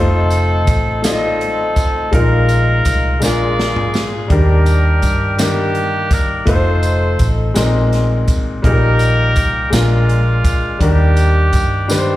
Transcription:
Already playing: F1 A3 C4 D#4 F4 A4 C5
0.30 closed hi-hat, tambourine
0.67 A1, kick, closed hi-hat, tambourine
1.02 A3 C4 D#4 F4 A4 D5, snare, closed hi-hat, tambourine
1.12 D#5
1.41 closed hi-hat
1.76 kick, closed hi-hat, tambourine
2.11 A#1 A#2 G#3 D#4 F4 A#4, kick, closed hi-hat
2.49 closed hi-hat, tambourine
2.85 C2, kick, closed hi-hat, tambourine
3.20 A#1 A#2 G#3 D4 F4 G#4 A#4 D5, snare, tambourine
3.59 snare
3.76 mid tom
3.94 snare, tambourine
4.28 D#2 D#3 G3 D4 G4 A#4, kick, closed hi-hat
4.32 G4 A#4
4.66 closed hi-hat, tambourine
5.02 G2, kick, closed hi-hat, tambourine
5.37 D#3 G3 A#3 D4 G4 A#4, snare, closed hi-hat, tambourine
5.75 closed hi-hat
6.11 A#4, kick, closed hi-hat, tambourine
6.45 F1 A3 D#4 F4 B4, kick, closed hi-hat
6.49 D#4 A4 C5
6.55 C5
6.83 closed hi-hat, tambourine
7.19 A1, kick, closed hi-hat, tambourine
7.54 A#1 A#2 G#3 C4 D#4 A#4, snare, closed hi-hat, tambourine
7.93 snare, closed hi-hat
8.28 kick, closed hi-hat, tambourine
8.62 A#1 A#2 G3 A#3 D#4 G4 G#4 A#4, kick, closed hi-hat
8.72 A#4
8.99 closed hi-hat, tambourine
9.36 C2, kick, closed hi-hat, tambourine
9.70 A#1 A#2 G#3 D4 F4 A#4, snare, closed hi-hat, tambourine
10.09 closed hi-hat
10.44 kick, closed hi-hat, tambourine
10.79 D#2 D#3 G3 A#3 D4 G4 A#4, kick, closed hi-hat
11.17 closed hi-hat, tambourine
11.53 G2, kick, closed hi-hat, tambourine
11.88 D#3 G3 D4 B4, snare, tambourine
11.98 C5

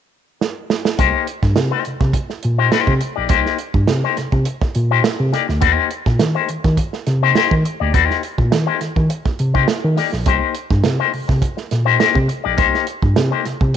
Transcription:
0.41 snare
0.70 snare
0.85 snare
0.98 C2 A#3 D#4 G4 C5, kick, closed hi-hat
1.27 closed hi-hat
1.43 G2, muted clean electric guitar stroke, kick, snare
1.56 C3, muted clean electric guitar stroke, snare, closed hi-hat
1.71 A#3 D#4 G4 C5
1.85 C3, closed hi-hat
2.00 C3, muted clean electric guitar stroke, kick, snare
2.13 muted clean electric guitar stroke, kick, closed hi-hat
2.30 muted clean electric guitar stroke, snare
2.43 A#2, closed hi-hat
2.58 A#3 D#4 G4 C5
2.72 A#3 D#4 G4 C5, snare, closed hi-hat
2.87 C3, kick
3.01 muted clean electric guitar stroke, closed hi-hat
3.16 A#1 A#3 D#4 G4 D5
3.29 C2 A#3 D#4 G4 C5, kick, closed hi-hat
3.46 snare
3.59 closed hi-hat
3.74 G2, muted clean electric guitar stroke, kick
3.88 C3, muted clean electric guitar stroke, snare, closed hi-hat
4.04 A#3 D#4 G4 C5
4.17 C3, snare, closed hi-hat
4.32 C3, muted clean electric guitar stroke, kick
4.45 muted clean electric guitar stroke, closed hi-hat
4.61 muted clean electric guitar stroke, kick, snare
4.75 A#2, closed hi-hat
4.91 A#3 D#4 G4 C5
5.04 muted clean electric guitar stroke, snare, closed hi-hat
5.20 C3
5.32 A#3 D#4 G4 D5, snare, closed hi-hat
5.48 D2, muted clean electric guitar stroke, snare
5.61 D#2 A3 D4 F#4 B4, kick, closed hi-hat
5.72 A#3 D#4 G4 C5
5.91 closed hi-hat
6.06 A#2, muted clean electric guitar stroke, kick, snare
6.19 D#3, muted clean electric guitar stroke, snare, closed hi-hat
6.35 A#3 D#4 G4 C5
6.49 D#3, muted clean electric guitar stroke, closed hi-hat
6.64 D#3, muted clean electric guitar stroke, kick, snare
6.77 muted clean electric guitar stroke, kick, closed hi-hat
6.93 muted clean electric guitar stroke, snare
7.07 C3, snare, closed hi-hat
7.23 A#3 D#4 G4 C5
7.35 A#3 D#4 G4 C5, snare, closed hi-hat
7.51 D#3, kick
7.65 muted clean electric guitar stroke, closed hi-hat
7.80 D2 A#3 D#4 G4 D5
7.94 D#2 A3 D4 F#4 B4, kick, closed hi-hat
8.05 A#3 D#4 G4 C5
8.10 snare
8.23 closed hi-hat
8.38 A#2, muted clean electric guitar stroke, kick
8.51 D#3, muted clean electric guitar stroke, snare, closed hi-hat
8.66 A#3 D#4 G4 C5
8.80 D#3, muted clean electric guitar stroke, snare, closed hi-hat
8.96 D#3, muted clean electric guitar stroke, kick
9.09 muted clean electric guitar stroke, closed hi-hat
9.25 muted clean electric guitar stroke, kick, snare
9.39 C3, closed hi-hat
9.54 A#3 D#4 G4 C5, kick
9.68 snare, closed hi-hat
9.84 D#3
9.97 A#3 D#4 G4 D5, snare, open hi-hat
10.13 A#1, muted clean electric guitar stroke, snare
10.26 C2 A#3 D#4 G4 C5, kick, closed hi-hat
10.55 closed hi-hat
10.70 G2, muted clean electric guitar stroke, kick, snare
10.84 C3, muted clean electric guitar stroke, snare, closed hi-hat
10.99 A#3 D#4 G4 C5
11.13 C3, muted clean electric guitar stroke, open hi-hat
11.28 C3, muted clean electric guitar stroke, kick, snare
11.41 muted clean electric guitar stroke, kick, closed hi-hat
11.57 muted clean electric guitar stroke, snare
11.71 A#2, snare, closed hi-hat
11.85 A#3 D#4 G4 C5
12.00 A#3 D#4 G4 C5, snare, closed hi-hat
12.15 C3, kick
12.28 muted clean electric guitar stroke, closed hi-hat
12.44 A#1 A#3 D#4 G4 D5
12.57 C2 A#3 D#4 G4 C5, kick, closed hi-hat
12.74 snare
12.87 closed hi-hat
13.02 G2, muted clean electric guitar stroke, kick
13.16 C3, muted clean electric guitar stroke, snare, closed hi-hat
13.31 A#3 D#4 G4 C5
13.45 C3, muted clean electric guitar stroke, snare, closed hi-hat
13.61 C3, muted clean electric guitar stroke, kick

